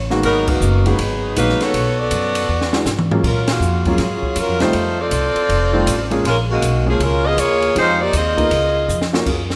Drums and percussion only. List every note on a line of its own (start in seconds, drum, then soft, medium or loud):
0.10 snare soft
0.23 kick soft
0.23 ride medium
0.47 kick loud
0.47 crash medium
0.61 hi-hat pedal medium
0.86 ride soft
0.99 kick soft
0.99 ride medium
1.36 kick soft
1.36 hi-hat pedal medium
1.36 ride medium
1.49 snare soft
1.61 snare soft
1.61 ride medium
1.74 kick soft
1.74 ride medium
2.11 kick soft
2.11 hi-hat pedal medium
2.11 ride medium
2.35 ride medium
2.61 snare medium
2.73 snare medium
2.86 snare medium
2.86 hi-hat pedal medium
2.99 mid tom medium
3.11 floor tom medium
3.24 kick medium
3.24 crash medium
3.48 snare medium
3.48 ride medium
3.62 hi-hat pedal medium
3.85 kick medium
3.85 ride soft
3.98 kick soft
3.98 snare soft
3.98 ride medium
4.23 kick medium
4.36 kick soft
4.36 hi-hat pedal medium
4.36 ride medium
4.60 snare medium
4.60 ride soft
4.73 kick soft
4.73 ride medium
5.11 kick soft
5.11 hi-hat pedal medium
5.11 ride medium
5.36 ride soft
5.49 kick soft
5.49 ride medium
5.87 kick soft
5.87 hi-hat pedal medium
5.87 ride medium
6.11 ride soft
6.25 kick soft
6.25 ride medium
6.62 kick soft
6.62 hi-hat pedal medium
6.62 ride medium
7.00 kick soft
7.00 ride medium
7.38 kick soft
7.38 hi-hat pedal medium
7.38 ride medium
7.62 ride soft
7.76 kick soft
7.76 ride medium
8.13 kick soft
8.13 hi-hat pedal medium
8.13 ride medium
8.38 kick medium
8.38 ride soft
8.51 kick soft
8.51 ride medium
8.89 hi-hat pedal medium
9.02 snare medium
9.14 snare medium
9.26 kick medium
9.26 crash medium
9.50 snare medium